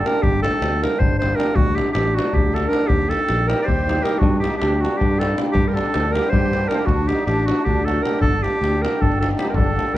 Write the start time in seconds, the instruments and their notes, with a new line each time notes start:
0.06 hammered dulcimer D3 G3 A#3 D4, clarinet A#4, davul high
0.22 picked electric bass G1, clarinet G4, davul low
0.42 hammered dulcimer D3 G3 A#3 D4, clarinet A4, davul high
0.53 davul high
0.62 picked electric bass D2, davul high
0.73 davul high
0.82 hammered dulcimer D3 G3 A#3 D4, clarinet A#4, davul high
0.94 davul high
0.99 picked electric bass G1, clarinet C5, davul low
1.19 hammered dulcimer D3 G3, clarinet C5, davul high
1.23 hammered dulcimer A#3 D4
1.36 hammered dulcimer D3 G3 A#3 D4, clarinet A#4
1.40 davul high
1.55 picked electric bass D2, clarinet F#4, davul low
1.75 hammered dulcimer D3 F#3 A3 D4, clarinet G4, davul high
1.87 davul high
1.92 picked electric bass A1, clarinet G4, davul high
2.07 davul high
2.15 hammered dulcimer D3 F#3 A3 D4, clarinet F#4, davul high
2.28 davul high
2.33 picked electric bass D2, clarinet G4, davul low
2.52 hammered dulcimer D3 F#3 A3 D4, clarinet A4
2.56 davul high
2.68 hammered dulcimer D3 F#3 A3 D4, clarinet A#4
2.73 davul high
2.87 picked electric bass D#2, clarinet G4, davul low
3.02 davul high
3.07 hammered dulcimer D#3 G3 A#3 D#4, clarinet A4, davul high
3.19 davul high
3.29 picked electric bass A#1, davul high
3.47 hammered dulcimer D#3 G3 A#3 D#4, accordion G4, clarinet A#4, davul high
3.59 accordion A#4, clarinet D5, davul high
3.65 picked electric bass D#2, accordion G4, clarinet C5, davul low
3.79 davul high
3.87 hammered dulcimer D#3 G3 A#3 D#4, davul high
3.99 accordion G4, davul high
4.03 hammered dulcimer D#3 G3 A#3 D#4, clarinet A#4, davul high
4.18 accordion D4, clarinet F#4, davul low
4.23 picked electric bass G2
4.38 accordion D#4, clarinet G4
4.43 hammered dulcimer D3 G3 A#3 D4, davul high
4.54 accordion D4, clarinet G4, davul high
4.62 picked electric bass D2, davul high
4.74 accordion D4, davul high
4.81 hammered dulcimer D3 G3 A#3 D4, clarinet F#4, davul high
4.93 accordion D4, davul high
4.98 picked electric bass G2, clarinet G4, davul low
5.15 accordion F#4
5.19 hammered dulcimer D3 G3 A#3 D4, clarinet A4, davul high
5.36 hammered dulcimer D3 G3 A#3 D4, davul high
5.50 accordion D4, clarinet G4
5.55 picked electric bass G2, davul low
5.66 accordion G4, clarinet A#4
5.72 hammered dulcimer D3 G3 A#3, accordion D4, clarinet A4
5.76 hammered dulcimer D4, davul high
5.86 davul high
5.94 picked electric bass D2, davul high
6.04 davul high
6.11 hammered dulcimer D3 G3, accordion G4, clarinet A#4
6.15 hammered dulcimer A#3 D4, davul high
6.24 davul high
6.30 picked electric bass G2, accordion G4, clarinet C5, davul low
6.52 hammered dulcimer D3 G3 A#3 D4, davul high
6.68 hammered dulcimer D3 G3 A#3 D4, accordion G4, clarinet A#4, davul high
6.74 accordion G4 A4, clarinet A#4 C5
6.86 picked electric bass D2, accordion D4, clarinet F#4, davul low
7.08 hammered dulcimer D3 F#3 A3 D4, accordion D#4, clarinet G4, davul high
7.19 davul high
7.26 picked electric bass A1, accordion D4, clarinet G4, davul high
7.40 davul high
7.46 hammered dulcimer D3 F#3, accordion D4, clarinet F#4, davul high
7.50 hammered dulcimer A3 D4
7.59 davul high
7.63 picked electric bass D2, accordion D4, clarinet G4, davul low
7.85 hammered dulcimer D3 F#3 A3 D4, accordion F#4, clarinet A4, davul high
8.02 hammered dulcimer D3 F#3 A3 D4, accordion G4, clarinet A#4, davul high
8.18 picked electric bass G1, accordion D4, clarinet A4
8.23 davul low
8.41 hammered dulcimer D3 G3 A#3 D4, accordion D4, clarinet G4, davul high
8.53 davul high
8.62 picked electric bass D2, davul high
8.82 hammered dulcimer D3 G3 A#3 D4, accordion G4, clarinet A#4, davul high
8.93 davul high
8.99 picked electric bass G1, accordion D4, clarinet A4, davul low
9.12 davul high
9.17 accordion F#4, clarinet A4
9.21 hammered dulcimer D3 G3 A#3 D4, davul high
9.31 accordion D#4, davul high
9.37 hammered dulcimer D3 G3 A#3 D4, clarinet G4, davul high
9.46 accordion G4, clarinet A#4
9.53 picked electric bass G1, accordion D4, clarinet A4
9.58 davul low
9.75 hammered dulcimer D3 G3 A#3 D4
9.79 davul high
9.89 davul high
9.94 picked electric bass D2, accordion G4, clarinet A#4